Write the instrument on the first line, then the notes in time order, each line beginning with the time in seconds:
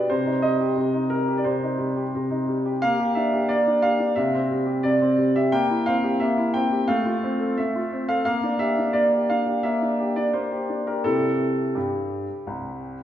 grand piano
Already playing: G4
0.10 C3 C5
0.26 D#4
0.42 G3 D#5
0.60 G4
0.76 C3
0.94 D#4
1.10 G3 A#4
1.28 G4
1.37 D5
1.44 C3 C5
1.63 D#4
1.78 G3
1.97 G4
2.15 C3
2.31 D#4
2.48 G3
2.66 G4
2.82 A#3 F5
2.99 G4
3.15 D4 E5
3.33 G4
3.49 A#3 D5
3.67 D4
3.82 G4 F5
4.00 D4
4.16 C3 E5
4.34 C4
4.51 G3
4.66 G4
4.83 C3 D5
5.01 C4
5.18 G3
5.36 G4 E5
5.52 A#3 G5
5.70 E4
5.86 C4 F5
6.04 G4
6.20 A#3 E5
6.38 E4
6.54 C4 G5
6.72 G4
6.88 A3 F5
7.05 F4
7.23 C4
7.40 A4
7.57 A3 E5
7.76 F4
7.92 C4
8.09 A4 F5
8.25 A#3 F5
8.43 D4
8.59 G4 E5
8.79 D4
8.93 A#3 D5
9.12 G4
9.30 D4 F5
9.47 G4
9.63 A#3 E5
9.82 D4
10.00 G4
10.16 D4 D5
10.33 A#3 C5
10.52 G4
10.69 D4
10.87 G4 A#4
11.04 C3 E4 G4 A4
11.75 G2 G4
12.47 C2